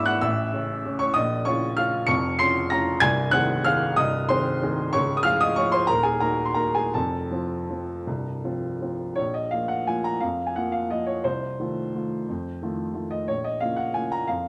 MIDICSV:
0, 0, Header, 1, 2, 480
1, 0, Start_track
1, 0, Key_signature, -5, "minor"
1, 0, Tempo, 311850
1, 329, Time_signature, 3, 2, 24, 8
1, 5129, Tempo, 319489
1, 9449, Tempo, 369458
1, 13769, Tempo, 343643
1, 17129, Tempo, 332042
1, 20805, End_track
2, 0, Start_track
2, 0, Title_t, "Upright piano"
2, 0, Program_c, 0, 0
2, 0, Control_c, 0, 64, 127
2, 0, Note_on_c, 0, 32, 84
2, 0, Note_on_c, 0, 44, 70
2, 0, Note_on_c, 0, 52, 49
2, 0, Note_on_c, 0, 59, 55
2, 0, Note_on_c, 0, 62, 63
2, 0, Note_on_c, 0, 71, 67
2, 0, Note_on_c, 0, 73, 76
2, 0, Note_on_c, 0, 76, 78
2, 0, Note_on_c, 0, 83, 102
2, 0, Note_on_c, 0, 85, 102
2, 0, Note_on_c, 0, 86, 88
2, 0, Note_on_c, 0, 88, 111
2, 85, Note_on_c, 0, 90, 104
2, 94, Note_on_c, 0, 78, 89
2, 296, Note_off_c, 0, 59, 0
2, 300, Note_off_c, 0, 52, 0
2, 302, Note_off_c, 0, 62, 0
2, 314, Note_off_c, 0, 78, 0
2, 326, Note_off_c, 0, 90, 0
2, 328, Note_off_c, 0, 88, 0
2, 328, Note_on_c, 0, 88, 112
2, 342, Note_on_c, 0, 33, 87
2, 346, Note_on_c, 0, 45, 73
2, 353, Note_off_c, 0, 76, 0
2, 353, Note_on_c, 0, 76, 82
2, 357, Control_c, 0, 64, 0
2, 360, Note_off_c, 0, 86, 0
2, 362, Note_off_c, 0, 73, 0
2, 363, Note_off_c, 0, 32, 0
2, 365, Note_off_c, 0, 71, 0
2, 368, Note_off_c, 0, 44, 0
2, 368, Note_off_c, 0, 85, 0
2, 369, Note_off_c, 0, 83, 0
2, 603, Control_c, 0, 64, 127
2, 799, Note_off_c, 0, 33, 0
2, 800, Note_off_c, 0, 45, 0
2, 819, Note_on_c, 0, 49, 64
2, 821, Note_on_c, 0, 61, 68
2, 1256, Note_off_c, 0, 49, 0
2, 1257, Note_off_c, 0, 61, 0
2, 1304, Note_on_c, 0, 49, 56
2, 1314, Note_on_c, 0, 61, 63
2, 1495, Note_off_c, 0, 76, 0
2, 1524, Note_on_c, 0, 85, 107
2, 1543, Note_on_c, 0, 73, 87
2, 1544, Note_off_c, 0, 88, 0
2, 1738, Note_off_c, 0, 49, 0
2, 1743, Note_off_c, 0, 61, 0
2, 1750, Note_on_c, 0, 87, 116
2, 1766, Note_off_c, 0, 73, 0
2, 1773, Note_off_c, 0, 85, 0
2, 1776, Note_on_c, 0, 75, 86
2, 1780, Note_on_c, 0, 34, 83
2, 1782, Note_on_c, 0, 46, 68
2, 1812, Control_c, 0, 64, 0
2, 1999, Control_c, 0, 64, 127
2, 2224, Note_off_c, 0, 75, 0
2, 2233, Note_on_c, 0, 85, 110
2, 2241, Note_on_c, 0, 61, 61
2, 2244, Note_off_c, 0, 87, 0
2, 2245, Note_off_c, 0, 34, 0
2, 2245, Note_on_c, 0, 49, 64
2, 2246, Note_off_c, 0, 46, 0
2, 2247, Note_on_c, 0, 73, 84
2, 2256, Note_on_c, 0, 65, 74
2, 2696, Note_off_c, 0, 61, 0
2, 2698, Note_off_c, 0, 49, 0
2, 2705, Note_off_c, 0, 65, 0
2, 2715, Note_off_c, 0, 73, 0
2, 2717, Note_on_c, 0, 89, 109
2, 2732, Note_on_c, 0, 49, 60
2, 2732, Note_on_c, 0, 77, 77
2, 2743, Note_off_c, 0, 85, 0
2, 2744, Note_on_c, 0, 61, 58
2, 2747, Note_on_c, 0, 65, 64
2, 3175, Note_off_c, 0, 49, 0
2, 3179, Note_on_c, 0, 97, 126
2, 3182, Note_off_c, 0, 61, 0
2, 3184, Note_off_c, 0, 65, 0
2, 3190, Note_off_c, 0, 77, 0
2, 3201, Note_on_c, 0, 29, 79
2, 3202, Note_on_c, 0, 85, 104
2, 3208, Note_on_c, 0, 41, 78
2, 3217, Note_off_c, 0, 89, 0
2, 3263, Control_c, 0, 64, 0
2, 3513, Control_c, 0, 64, 127
2, 3649, Note_off_c, 0, 85, 0
2, 3668, Note_off_c, 0, 29, 0
2, 3671, Note_off_c, 0, 41, 0
2, 3671, Note_off_c, 0, 97, 0
2, 3675, Note_on_c, 0, 96, 127
2, 3680, Note_on_c, 0, 49, 61
2, 3685, Note_on_c, 0, 84, 107
2, 3688, Note_on_c, 0, 61, 67
2, 3698, Note_on_c, 0, 65, 64
2, 4132, Note_off_c, 0, 49, 0
2, 4136, Note_off_c, 0, 61, 0
2, 4142, Note_off_c, 0, 65, 0
2, 4150, Note_off_c, 0, 84, 0
2, 4157, Note_on_c, 0, 94, 111
2, 4176, Note_on_c, 0, 49, 57
2, 4178, Note_on_c, 0, 61, 67
2, 4179, Note_off_c, 0, 96, 0
2, 4184, Note_on_c, 0, 65, 71
2, 4184, Note_on_c, 0, 82, 91
2, 4605, Note_off_c, 0, 49, 0
2, 4607, Note_off_c, 0, 61, 0
2, 4609, Note_off_c, 0, 65, 0
2, 4623, Note_on_c, 0, 92, 125
2, 4624, Note_off_c, 0, 82, 0
2, 4637, Note_on_c, 0, 36, 87
2, 4639, Note_on_c, 0, 24, 83
2, 4639, Note_on_c, 0, 80, 100
2, 4643, Note_off_c, 0, 94, 0
2, 4687, Control_c, 0, 64, 0
2, 4894, Control_c, 0, 64, 127
2, 5085, Note_off_c, 0, 80, 0
2, 5101, Note_on_c, 0, 90, 124
2, 5103, Note_off_c, 0, 36, 0
2, 5104, Note_off_c, 0, 24, 0
2, 5111, Note_off_c, 0, 92, 0
2, 5112, Note_on_c, 0, 51, 64
2, 5113, Note_on_c, 0, 60, 67
2, 5115, Note_on_c, 0, 78, 92
2, 5136, Note_on_c, 0, 68, 67
2, 5555, Note_off_c, 0, 51, 0
2, 5555, Note_off_c, 0, 60, 0
2, 5568, Note_off_c, 0, 68, 0
2, 5571, Note_off_c, 0, 78, 0
2, 5599, Note_off_c, 0, 90, 0
2, 5599, Note_on_c, 0, 89, 121
2, 5607, Note_on_c, 0, 51, 62
2, 5610, Note_on_c, 0, 77, 90
2, 5611, Note_on_c, 0, 60, 56
2, 5633, Note_on_c, 0, 68, 67
2, 6040, Note_off_c, 0, 51, 0
2, 6043, Note_off_c, 0, 60, 0
2, 6055, Note_off_c, 0, 68, 0
2, 6057, Note_off_c, 0, 77, 0
2, 6079, Note_on_c, 0, 87, 116
2, 6084, Note_off_c, 0, 89, 0
2, 6094, Note_on_c, 0, 75, 84
2, 6096, Note_on_c, 0, 36, 83
2, 6097, Note_on_c, 0, 24, 75
2, 6117, Control_c, 0, 64, 0
2, 6358, Control_c, 0, 64, 127
2, 6529, Note_off_c, 0, 75, 0
2, 6549, Note_off_c, 0, 24, 0
2, 6549, Note_off_c, 0, 36, 0
2, 6554, Note_off_c, 0, 87, 0
2, 6562, Note_on_c, 0, 84, 105
2, 6577, Note_on_c, 0, 51, 67
2, 6578, Note_on_c, 0, 72, 80
2, 6581, Note_on_c, 0, 68, 69
2, 6584, Note_on_c, 0, 60, 65
2, 7016, Note_off_c, 0, 51, 0
2, 7018, Note_off_c, 0, 68, 0
2, 7020, Note_off_c, 0, 60, 0
2, 7031, Note_off_c, 0, 72, 0
2, 7057, Note_off_c, 0, 84, 0
2, 7070, Note_on_c, 0, 51, 60
2, 7071, Note_on_c, 0, 60, 64
2, 7079, Note_on_c, 0, 68, 66
2, 7502, Note_off_c, 0, 51, 0
2, 7502, Note_off_c, 0, 60, 0
2, 7506, Note_off_c, 0, 68, 0
2, 7525, Note_on_c, 0, 85, 126
2, 7535, Note_on_c, 0, 73, 87
2, 7544, Note_on_c, 0, 37, 87
2, 7545, Note_on_c, 0, 25, 68
2, 7565, Control_c, 0, 64, 0
2, 7788, Control_c, 0, 64, 127
2, 7868, Note_off_c, 0, 73, 0
2, 7887, Note_off_c, 0, 85, 0
2, 7890, Note_on_c, 0, 87, 89
2, 7979, Note_on_c, 0, 89, 127
2, 7997, Note_on_c, 0, 53, 64
2, 8002, Note_off_c, 0, 25, 0
2, 8002, Note_off_c, 0, 37, 0
2, 8009, Note_on_c, 0, 65, 65
2, 8009, Note_on_c, 0, 77, 97
2, 8012, Note_off_c, 0, 87, 0
2, 8012, Note_on_c, 0, 68, 65
2, 8234, Note_off_c, 0, 77, 0
2, 8236, Note_off_c, 0, 89, 0
2, 8244, Note_on_c, 0, 87, 120
2, 8261, Note_on_c, 0, 75, 80
2, 8437, Note_off_c, 0, 53, 0
2, 8444, Note_off_c, 0, 65, 0
2, 8446, Note_off_c, 0, 68, 0
2, 8478, Note_on_c, 0, 85, 114
2, 8482, Note_off_c, 0, 75, 0
2, 8488, Note_on_c, 0, 53, 56
2, 8490, Note_off_c, 0, 87, 0
2, 8495, Note_on_c, 0, 65, 52
2, 8500, Note_on_c, 0, 73, 75
2, 8506, Note_on_c, 0, 68, 62
2, 8715, Note_on_c, 0, 84, 104
2, 8719, Note_off_c, 0, 73, 0
2, 8725, Note_off_c, 0, 85, 0
2, 8740, Note_on_c, 0, 72, 73
2, 8915, Note_off_c, 0, 53, 0
2, 8918, Note_off_c, 0, 65, 0
2, 8925, Note_off_c, 0, 68, 0
2, 8943, Note_on_c, 0, 82, 114
2, 8953, Note_off_c, 0, 72, 0
2, 8956, Note_off_c, 0, 84, 0
2, 8962, Note_on_c, 0, 27, 67
2, 8967, Note_on_c, 0, 39, 66
2, 8967, Note_on_c, 0, 70, 78
2, 8988, Control_c, 0, 64, 0
2, 9185, Note_on_c, 0, 80, 90
2, 9187, Note_off_c, 0, 70, 0
2, 9191, Note_off_c, 0, 82, 0
2, 9207, Note_on_c, 0, 68, 77
2, 9269, Control_c, 0, 64, 127
2, 9434, Note_off_c, 0, 27, 0
2, 9435, Note_off_c, 0, 68, 0
2, 9437, Note_off_c, 0, 39, 0
2, 9441, Note_off_c, 0, 80, 0
2, 9443, Note_on_c, 0, 82, 88
2, 9457, Note_on_c, 0, 70, 75
2, 9458, Note_on_c, 0, 58, 56
2, 9464, Note_on_c, 0, 63, 52
2, 9469, Note_on_c, 0, 66, 66
2, 9764, Note_off_c, 0, 70, 0
2, 9770, Note_on_c, 0, 84, 80
2, 9781, Note_off_c, 0, 82, 0
2, 9859, Note_off_c, 0, 58, 0
2, 9863, Note_off_c, 0, 63, 0
2, 9866, Note_off_c, 0, 66, 0
2, 9887, Note_on_c, 0, 82, 89
2, 9893, Note_off_c, 0, 84, 0
2, 9897, Note_on_c, 0, 58, 48
2, 9904, Note_on_c, 0, 70, 65
2, 9916, Note_on_c, 0, 66, 49
2, 9917, Note_on_c, 0, 63, 51
2, 10126, Note_off_c, 0, 70, 0
2, 10134, Note_off_c, 0, 82, 0
2, 10148, Note_on_c, 0, 80, 86
2, 10154, Note_on_c, 0, 68, 67
2, 10338, Note_off_c, 0, 58, 0
2, 10348, Note_off_c, 0, 66, 0
2, 10349, Note_off_c, 0, 63, 0
2, 10378, Note_off_c, 0, 68, 0
2, 10392, Note_off_c, 0, 80, 0
2, 10399, Note_on_c, 0, 81, 89
2, 10408, Note_on_c, 0, 29, 57
2, 10412, Control_c, 0, 64, 0
2, 10415, Note_on_c, 0, 41, 70
2, 10418, Note_on_c, 0, 69, 71
2, 10637, Control_c, 0, 64, 127
2, 10874, Note_off_c, 0, 29, 0
2, 10878, Note_off_c, 0, 41, 0
2, 10881, Note_on_c, 0, 53, 48
2, 10892, Note_on_c, 0, 60, 50
2, 10908, Note_on_c, 0, 65, 57
2, 11322, Note_off_c, 0, 53, 0
2, 11329, Note_off_c, 0, 60, 0
2, 11337, Note_off_c, 0, 65, 0
2, 11384, Note_on_c, 0, 53, 41
2, 11386, Note_on_c, 0, 65, 47
2, 11392, Note_on_c, 0, 60, 39
2, 11817, Note_off_c, 0, 53, 0
2, 11818, Note_off_c, 0, 65, 0
2, 11821, Note_off_c, 0, 60, 0
2, 11872, Note_on_c, 0, 24, 57
2, 11872, Note_on_c, 0, 36, 59
2, 11888, Control_c, 0, 64, 0
2, 12085, Control_c, 0, 64, 127
2, 12337, Note_off_c, 0, 24, 0
2, 12337, Note_off_c, 0, 36, 0
2, 12351, Note_on_c, 0, 53, 47
2, 12357, Note_on_c, 0, 60, 44
2, 12360, Note_on_c, 0, 65, 53
2, 12788, Note_off_c, 0, 53, 0
2, 12792, Note_off_c, 0, 60, 0
2, 12793, Note_off_c, 0, 65, 0
2, 12796, Note_off_c, 0, 69, 0
2, 12836, Note_on_c, 0, 53, 44
2, 12839, Note_off_c, 0, 81, 0
2, 12843, Note_on_c, 0, 60, 43
2, 12846, Note_on_c, 0, 65, 46
2, 13267, Note_off_c, 0, 53, 0
2, 13271, Note_off_c, 0, 60, 0
2, 13273, Note_off_c, 0, 65, 0
2, 13278, Note_on_c, 0, 73, 92
2, 13300, Note_on_c, 0, 34, 59
2, 13337, Control_c, 0, 64, 0
2, 13517, Note_on_c, 0, 75, 81
2, 13524, Note_off_c, 0, 73, 0
2, 13575, Control_c, 0, 64, 127
2, 13738, Note_on_c, 0, 77, 88
2, 13751, Note_off_c, 0, 34, 0
2, 13760, Note_off_c, 0, 75, 0
2, 13766, Note_on_c, 0, 53, 43
2, 13766, Note_on_c, 0, 58, 44
2, 13771, Note_on_c, 0, 65, 46
2, 13977, Note_on_c, 0, 78, 78
2, 13995, Note_off_c, 0, 77, 0
2, 14200, Note_off_c, 0, 58, 0
2, 14201, Note_off_c, 0, 53, 0
2, 14203, Note_off_c, 0, 65, 0
2, 14233, Note_off_c, 0, 78, 0
2, 14244, Note_on_c, 0, 80, 84
2, 14257, Note_on_c, 0, 53, 41
2, 14261, Note_on_c, 0, 58, 39
2, 14263, Note_on_c, 0, 65, 45
2, 14481, Note_on_c, 0, 82, 83
2, 14486, Note_off_c, 0, 80, 0
2, 14681, Note_off_c, 0, 53, 0
2, 14684, Note_off_c, 0, 58, 0
2, 14684, Note_off_c, 0, 65, 0
2, 14708, Note_on_c, 0, 77, 81
2, 14721, Note_off_c, 0, 82, 0
2, 14722, Note_on_c, 0, 41, 57
2, 14755, Control_c, 0, 64, 0
2, 14939, Control_c, 0, 64, 127
2, 15072, Note_on_c, 0, 80, 67
2, 15074, Note_off_c, 0, 77, 0
2, 15186, Note_off_c, 0, 41, 0
2, 15197, Note_off_c, 0, 80, 0
2, 15200, Note_on_c, 0, 78, 72
2, 15222, Note_on_c, 0, 58, 50
2, 15227, Note_on_c, 0, 53, 40
2, 15228, Note_on_c, 0, 65, 46
2, 15427, Note_on_c, 0, 77, 77
2, 15444, Note_off_c, 0, 78, 0
2, 15652, Note_off_c, 0, 58, 0
2, 15655, Note_off_c, 0, 53, 0
2, 15656, Note_off_c, 0, 65, 0
2, 15682, Note_off_c, 0, 77, 0
2, 15684, Note_on_c, 0, 75, 77
2, 15692, Note_on_c, 0, 53, 41
2, 15694, Note_on_c, 0, 58, 42
2, 15709, Note_on_c, 0, 65, 48
2, 15909, Note_on_c, 0, 73, 75
2, 15929, Note_off_c, 0, 75, 0
2, 16117, Note_off_c, 0, 53, 0
2, 16118, Note_off_c, 0, 58, 0
2, 16127, Note_off_c, 0, 65, 0
2, 16152, Note_off_c, 0, 73, 0
2, 16155, Note_on_c, 0, 72, 83
2, 16162, Note_on_c, 0, 36, 60
2, 16193, Control_c, 0, 64, 0
2, 16386, Control_c, 0, 64, 127
2, 16631, Note_off_c, 0, 36, 0
2, 16651, Note_on_c, 0, 51, 47
2, 16664, Note_on_c, 0, 65, 50
2, 16666, Note_on_c, 0, 57, 43
2, 17086, Note_off_c, 0, 51, 0
2, 17093, Note_off_c, 0, 65, 0
2, 17094, Note_off_c, 0, 57, 0
2, 17140, Note_on_c, 0, 51, 37
2, 17149, Note_on_c, 0, 57, 38
2, 17156, Note_on_c, 0, 65, 44
2, 17571, Note_off_c, 0, 51, 0
2, 17576, Note_off_c, 0, 57, 0
2, 17580, Note_off_c, 0, 65, 0
2, 17634, Note_on_c, 0, 41, 56
2, 17644, Control_c, 0, 64, 0
2, 17870, Control_c, 0, 64, 127
2, 18088, Note_off_c, 0, 41, 0
2, 18120, Note_on_c, 0, 51, 44
2, 18121, Note_on_c, 0, 57, 48
2, 18129, Note_on_c, 0, 65, 47
2, 18544, Note_off_c, 0, 51, 0
2, 18544, Note_off_c, 0, 57, 0
2, 18549, Note_off_c, 0, 65, 0
2, 18572, Note_on_c, 0, 51, 38
2, 18577, Note_on_c, 0, 57, 45
2, 18583, Note_on_c, 0, 65, 48
2, 18816, Note_off_c, 0, 72, 0
2, 18817, Note_on_c, 0, 75, 75
2, 19009, Note_off_c, 0, 51, 0
2, 19012, Note_off_c, 0, 57, 0
2, 19016, Note_off_c, 0, 65, 0
2, 19059, Note_off_c, 0, 75, 0
2, 19066, Note_on_c, 0, 73, 88
2, 19082, Note_on_c, 0, 34, 55
2, 19091, Control_c, 0, 64, 0
2, 19300, Note_off_c, 0, 73, 0
2, 19305, Note_on_c, 0, 75, 77
2, 19309, Control_c, 0, 64, 127
2, 19533, Note_off_c, 0, 34, 0
2, 19538, Note_on_c, 0, 77, 87
2, 19540, Note_off_c, 0, 75, 0
2, 19557, Note_on_c, 0, 49, 40
2, 19567, Note_on_c, 0, 65, 47
2, 19568, Note_on_c, 0, 58, 40
2, 19768, Note_on_c, 0, 78, 73
2, 19780, Note_off_c, 0, 77, 0
2, 19988, Note_off_c, 0, 49, 0
2, 19994, Note_off_c, 0, 65, 0
2, 19995, Note_off_c, 0, 58, 0
2, 20021, Note_off_c, 0, 78, 0
2, 20025, Note_on_c, 0, 80, 80
2, 20035, Note_on_c, 0, 49, 39
2, 20044, Note_on_c, 0, 65, 45
2, 20050, Note_on_c, 0, 58, 37
2, 20269, Note_off_c, 0, 80, 0
2, 20278, Note_on_c, 0, 82, 85
2, 20461, Note_off_c, 0, 49, 0
2, 20466, Note_off_c, 0, 65, 0
2, 20469, Note_off_c, 0, 58, 0
2, 20506, Note_on_c, 0, 77, 83
2, 20508, Note_off_c, 0, 82, 0
2, 20523, Note_on_c, 0, 41, 53
2, 20528, Control_c, 0, 64, 0
2, 20750, Control_c, 0, 64, 127
2, 20805, Note_off_c, 0, 41, 0
2, 20805, Note_off_c, 0, 77, 0
2, 20805, End_track
0, 0, End_of_file